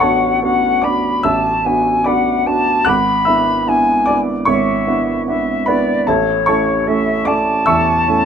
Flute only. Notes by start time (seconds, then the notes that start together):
Already playing: F#5
0.43 F#5
0.84 B5
1.25 A5
1.65 G#5
2.06 F#5
2.46 A5
2.88 B5
3.68 G#5
4.47 E5
5.27 E5
5.67 D5
6.08 C#5
6.87 E5
7.27 A5